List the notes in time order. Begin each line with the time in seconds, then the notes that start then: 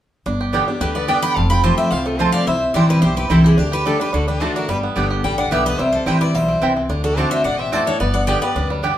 0.26 G1 G2 D4
0.41 G4
0.53 D3 G3 B3 G4 D5 G5
0.68 B3 D4 G4
0.80 D2 D3 G4 B4
0.95 B3 B4 D5
1.08 D3 G3 B3 D4 G4 D5 G5
1.22 G4 G5 B5
1.36 F1 F2 C4 F5 A5
1.50 F4 G5 B5
1.63 F3 A3 C4 F4 G4 C5 G5 A5
1.78 C4 C5 E5
1.91 C2 C3 F4 C5 F5
2.06 A3 F4 A4
2.18 F3 A3 C4 F4 A4 C5 A5
2.32 G4 D5 F5
2.47 C2 C3 E4 C5 E5
2.74 A1 E3 G3 C4 E4 G4 C5 D5 G5
2.89 E4 G4 B4
3.02 B1 G2 G4 C5
3.16 C4 G4 B4
3.30 C2 E3 G3 C4 E4 A4 C5 G5
3.44 E4 G4 G#4
3.58 D2 D3 D4 G4
3.72 G4 B4
3.85 D3 G3 A3 D4 G4 A4 D5 A5
4.00 D4 G4 B4
4.13 D2 D3 D4 F#4 A4
4.28 D4 G4 B4
4.40 D3 A3 D4 F#4 A4 C5 D5 A5
4.56 D4 F#4 A#4
4.68 G1 G2 G3 G4 B4
4.83 B3
4.96 G1 D3 G3 B3 D4 G4 D5 G5
5.11 G4
5.24 A1 D3 G3 D5 G5
5.37 D4 D5 F#5
5.51 B1 D3 G3 B3 G4 B4 D5 E5 G5
5.66 B3 B4 D#5
5.79 C2 C3 G3 C5 E5
5.92 A4 C5
6.06 A1 E3 G3 C4 E4 G4 B4 C5 G5
6.21 E4 B4 D5
6.34 B1 B2 G3 C5 E5
6.48 C4
6.62 C2 C3 E3 C4 E4 C5 G5
6.77 C4
6.89 D2 D3 D4
7.04 D4 F#4 A4
7.17 D3 A3 C4 F#4 A4 C5 D5 A5
7.31 D4 C5 E5
7.44 A1 B2 D4 D5 F#5
7.59 C4 E5 G5
7.72 A2 C4 D4 F#4 C5 D5 E5 A5
7.87 D4 A4 C#5
8.00 G1 G2 B3 B4 D5
8.13 D4 D5 F#5
8.26 D3 G3 B3 G4 D5 G5
8.41 B3 G4 B4 D5
8.55 D2 F#2 D4
8.70 G3
8.83 G2 B3 D4 G4 D5 G5